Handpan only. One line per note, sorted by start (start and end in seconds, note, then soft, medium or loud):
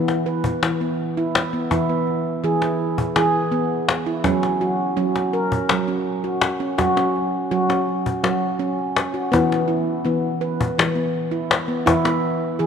0.00 0.59 E3 medium
0.00 0.26 B3 medium
0.26 0.62 B4 medium
0.63 1.67 E3 medium
0.81 1.17 B3 medium
1.17 1.53 E4 medium
1.53 1.71 B3 medium
1.71 2.40 E3 medium
1.71 1.89 E4 medium
1.89 2.25 B3 medium
2.44 3.12 E3 medium
2.44 2.62 G#4 medium
2.62 2.98 E4 medium
3.16 4.21 E3 medium
3.16 3.52 G#4 medium
3.52 3.88 B3 medium
4.06 4.25 E4 medium
4.24 4.93 F#3 loud
4.24 4.61 C#4 medium
4.61 4.97 F#4 medium
4.97 5.66 F#3 medium
4.97 5.33 C#4 medium
5.33 5.70 A#4 medium
5.70 6.75 F#3 medium
5.88 6.24 C#4 medium
6.24 6.60 F#4 medium
6.60 6.79 C#4 medium
6.78 7.47 F#3 medium
6.78 6.97 F#4 medium
6.97 7.33 C#4 medium
7.51 8.20 F#3 medium
7.51 7.70 F#4 medium
7.69 8.06 C#4 medium
8.24 9.29 F#3 medium
8.24 8.60 F#4 medium
8.59 8.96 C#4 medium
9.14 9.32 F#4 medium
9.32 10.02 E3 loud
9.32 9.69 B3 loud
9.68 10.05 E4 medium
10.05 10.74 E3 medium
10.05 10.41 B3 medium
10.41 10.78 B4 medium
10.78 11.83 E3 medium
10.95 11.32 B3 medium
11.31 11.68 E4 medium
11.68 11.87 B3 medium
11.86 12.56 E3 loud
11.86 12.05 E4 medium
12.05 12.41 B3 medium
12.59 12.66 E3 medium
12.59 12.66 G#4 medium